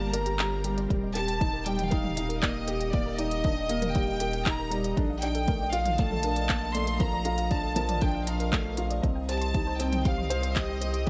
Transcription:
Already playing: analog synth bass G1, felt piano G3 A#3 D4 G4 A#4, ambient pad G3 C4 A#4, violin section A5
0.01 synth arpeggio sound A#5
0.12 felt piano A#4, synth arpeggio sound D5, violin section A#5, closed hi-hat
0.26 synth arpeggio sound G4, closed hi-hat
0.39 felt piano G4, synth arpeggio sound G5, clap, closed hi-hat
0.64 felt piano G3, synth arpeggio sound G4, closed hi-hat
0.77 synth arpeggio sound D5, closed hi-hat
0.89 analog synth bass D#1, felt piano G3, ambient pad D#4 G4 D#5, synth arpeggio sound D5, kick, closed hi-hat
1.03 synth arpeggio sound D#5
1.15 felt piano G4, synth arpeggio sound A#4, violin section A5, closed hi-hat
1.28 synth arpeggio sound G5, closed hi-hat
1.40 felt piano D#4, synth arpeggio sound D#5, kick, closed hi-hat
1.53 synth arpeggio sound A#4
1.65 felt piano G3, synth arpeggio sound D5, violin section G5, closed hi-hat
1.78 synth arpeggio sound D#5, closed hi-hat, mid tom
1.90 felt piano D#4, synth arpeggio sound A#4, violin section F5, kick, closed hi-hat
2.04 synth arpeggio sound G5, mid tom
2.16 felt piano D#4, synth arpeggio sound D#5, closed hi-hat
2.29 synth arpeggio sound A#4, closed hi-hat
2.41 felt piano A#3, synth arpeggio sound D5, violin section D#5, kick, clap, closed hi-hat
2.67 felt piano G4, synth arpeggio sound A#4, closed hi-hat
2.80 synth arpeggio sound G5, closed hi-hat
2.91 felt piano A#3, violin section D5, synth arpeggio sound D#5, kick, closed hi-hat
3.06 synth arpeggio sound A#4
3.16 felt piano D#4, synth arpeggio sound D5, violin section D#5, closed hi-hat
3.31 synth arpeggio sound D#5, closed hi-hat
3.44 felt piano D4, synth arpeggio sound A#4, kick, closed hi-hat
3.57 synth arpeggio sound G5
3.69 felt piano A#3, synth arpeggio sound D#5, closed hi-hat
3.82 synth arpeggio sound A#4, closed hi-hat, mid tom
3.93 felt piano G3, synth arpeggio sound D5, violin section G5, kick, closed hi-hat
4.08 synth arpeggio sound D#5
4.20 felt piano G4, synth arpeggio sound A#4, closed hi-hat
4.33 synth arpeggio sound G5, closed hi-hat
4.45 felt piano D#4, synth arpeggio sound D#5, violin section A#5, kick, clap, closed hi-hat
4.59 synth arpeggio sound A#4
4.71 felt piano G3, synth arpeggio sound D5, closed hi-hat
4.84 synth arpeggio sound D#5, closed hi-hat
4.96 analog synth bass A#1, felt piano D4, ambient pad A4, synth arpeggio sound A4, kick, closed hi-hat
5.10 synth arpeggio sound F5
5.22 felt piano D4, synth arpeggio sound D5, violin section G5, closed hi-hat
5.35 synth arpeggio sound A4, closed hi-hat
5.47 felt piano A3, synth arpeggio sound A#4, kick, closed hi-hat
5.61 synth arpeggio sound D5
5.73 felt piano F4, synth arpeggio sound A4, violin section F5, closed hi-hat
5.86 synth arpeggio sound F5, closed hi-hat, mid tom
5.98 felt piano A3, synth arpeggio sound D5, violin section A5, kick, closed hi-hat
6.11 synth arpeggio sound A4, mid tom
6.23 felt piano D4, synth arpeggio sound A#4, closed hi-hat
6.36 synth arpeggio sound D5, closed hi-hat
6.49 felt piano A#3, synth arpeggio sound A4, kick, clap, closed hi-hat
6.62 synth arpeggio sound F5
6.74 felt piano A3, synth arpeggio sound D5, violin section C6, closed hi-hat
6.87 synth arpeggio sound A4, closed hi-hat
6.99 felt piano F3, synth arpeggio sound A#4, ambient pad A#4, violin section A#5, kick, closed hi-hat
7.13 synth arpeggio sound D5
7.25 felt piano F4, synth arpeggio sound A4, closed hi-hat
7.38 synth arpeggio sound F5, closed hi-hat
7.50 felt piano D4, synth arpeggio sound D5, violin section A5, kick, closed hi-hat
7.63 synth arpeggio sound A4
7.76 felt piano F3, synth arpeggio sound A#4, closed hi-hat
7.89 synth arpeggio sound D5, closed hi-hat, mid tom
8.01 felt piano D4, synth arpeggio sound A4, violin section G5, kick, closed hi-hat
8.14 synth arpeggio sound F5
8.27 felt piano D4, violin section F5, synth arpeggio sound A#5, closed hi-hat
8.40 synth arpeggio sound A#4, closed hi-hat
8.53 felt piano A3, kick, clap, closed hi-hat
8.77 felt piano F4, synth arpeggio sound A#4, closed hi-hat
8.90 synth arpeggio sound D5, closed hi-hat
9.02 analog synth bass C2, felt piano C4, ambient pad C4 G4 D#5, synth arpeggio sound D#5, kick, closed hi-hat
9.15 synth arpeggio sound G5
9.28 felt piano G4, synth arpeggio sound C5, violin section A5, closed hi-hat
9.41 synth arpeggio sound C6, closed hi-hat
9.54 felt piano D#4, synth arpeggio sound G4, kick, closed hi-hat
9.67 synth arpeggio sound C5
9.79 felt piano C4, synth arpeggio sound D#5, violin section G5, closed hi-hat
9.92 synth arpeggio sound G5, closed hi-hat, mid tom
10.05 felt piano G3, synth arpeggio sound C5, violin section F5, kick, closed hi-hat
10.18 synth arpeggio sound C6, mid tom
10.30 synth arpeggio sound G4, felt piano C5, closed hi-hat
10.42 synth arpeggio sound C5, closed hi-hat
10.55 felt piano G4, synth arpeggio sound D#5, violin section D#5, kick, clap, closed hi-hat
10.69 synth arpeggio sound G5
10.81 felt piano G3, synth arpeggio sound C5, closed hi-hat
10.94 synth arpeggio sound C6, closed hi-hat
11.06 synth arpeggio sound G4, felt piano G4, closed hi-hat

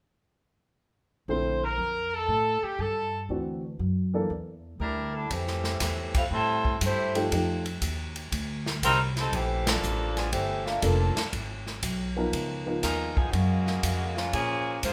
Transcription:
1.28 upright bass A#1, grand piano D3 A3 C4 E4, saxophone section C5
1.64 saxophone section A#4
1.78 upright bass F2
2.14 saxophone section A4
2.28 upright bass A2
2.63 saxophone section G4, muted upright bass stroke
2.78 upright bass G2, saxophone section A4
3.29 upright bass D2, grand piano E3 C4 D4 F#4
3.79 upright bass F#2
4.14 grand piano E3 A#3 D4 A4
4.30 upright bass E2
4.80 upright bass D2, saxophone section G3 D4 E4 A#4
5.13 saxophone section G3 D4 E4 A4
5.30 upright bass F2, saxophone section E3 A3 C4 G4, kick, ride
5.47 snare
5.64 snare
5.80 upright bass E2, kick, snare, hi-hat pedal, ride
6.14 saxophone section G3 A3 C4 F4, kick, ride
6.31 upright bass A2, saxophone section G3 C4 E4 A4, kick
6.65 kick
6.81 upright bass G2, saxophone section G4, kick, hi-hat pedal, ride
6.85 saxophone section A3 E4 C5
7.15 grand piano F3 A3 D#4 G4, ride
7.31 upright bass F2, grand piano F3 A3 D#4 G4, kick, ride
7.66 ride
7.82 upright bass D#2, kick, hi-hat pedal, ride
8.16 ride
8.32 upright bass D2, kick, ride
8.66 snare
8.82 upright bass C2, saxophone section G3 C4 D#4 A#4, kick, hi-hat pedal, ride
9.17 saxophone section G3 C4 D#4 A4, snare, ride
9.32 upright bass A#1, saxophone section E3 A3 C4 G4, kick, ride
9.67 saxophone section F3 A#3 D4 A4, snare, ride
9.82 upright bass A1, hi-hat pedal
10.17 saxophone section F3 B3 D4 G#4, snare, ride
10.31 upright bass G1, saxophone section E3 A3 C4 G4, kick, ride
10.66 saxophone section A3 A#3 D4 F4, snare
10.82 upright bass F1, grand piano F3 A#3 D4 A4, saxophone section F3 A#3 D4 A4, kick, hi-hat pedal, ride
11.17 muted upright bass stroke, snare, ride
11.32 upright bass G#1, kick, ride
11.67 snare
11.83 upright bass B1, kick, hi-hat pedal, ride
12.16 grand piano F3 B3 D#4 A#4
12.33 upright bass C#2, kick, ride
12.66 grand piano F3 B3 D#4 A#4
12.83 upright bass D#2, saxophone section G#3 D#4 F4 A#4, kick, snare, hi-hat pedal, ride
13.16 saxophone section F3 B3 D#4 G#4, kick
13.31 upright bass F#2, saxophone section C#3 G#3 A#3 F#4, kick, ride
13.67 snare
13.83 upright bass F2, kick, hi-hat pedal, ride
14.15 saxophone section G#3 A#3 C#4 F4, snare
14.32 upright bass A#2, saxophone section F3 A#3 C#4 G#4, kick, ride
14.83 upright bass G#2, saxophone section A#3 F4 G#4 C5, kick, hi-hat pedal, ride

